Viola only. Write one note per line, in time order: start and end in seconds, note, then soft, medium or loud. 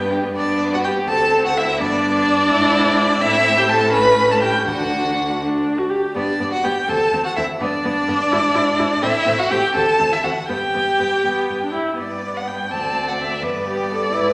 0.00 0.12 B3 soft
0.11 0.25 D4 soft
0.24 0.36 B3 medium
0.36 1.05 B3 medium
1.09 1.76 C4 medium
1.80 2.46 B3 medium
2.51 3.17 E4 medium
3.20 3.89 C4 medium
3.93 4.63 C#4 medium
4.67 5.32 D4 medium
5.40 5.80 D4 medium
5.78 5.91 F#4 medium
5.90 6.15 G4 medium
6.16 6.24 B3 medium
6.40 6.48 B3 soft
6.64 6.72 B3 medium
6.88 6.96 C4 medium
7.13 7.21 C4 medium
7.37 7.45 C4 medium
7.61 7.69 B3 medium
7.85 7.93 B3 medium
8.08 8.16 B3 medium
8.32 8.40 E4 medium
8.55 8.63 E4 medium
8.79 8.87 E4 medium
9.02 9.10 C4 medium
9.26 9.34 C4 medium
9.50 9.58 C4 medium
9.74 9.82 C4 medium
9.99 10.07 C4 medium
10.23 10.31 C4 soft
10.49 10.57 B3 medium
10.74 10.82 B3 soft
10.99 11.07 B3 soft
11.24 11.59 B3 medium
11.63 11.74 D4 soft
11.74 11.99 E4 soft
11.99 12.68 B3 medium
12.72 13.40 C4 soft
13.43 14.11 B3 medium
14.14 14.33 E4 medium